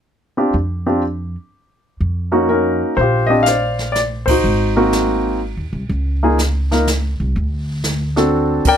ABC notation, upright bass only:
X:1
M:3/4
L:1/8
Q:"Swing" 1/4=123
K:Bb
V:1 name="Upright bass" clef=bass
z2 F,,3 z | z2 F,,3 z | B,,,6 | _A,,,4- (3A,,, E,, C,, |
_D,,4- D,, C,, | D,,4- D,, z |]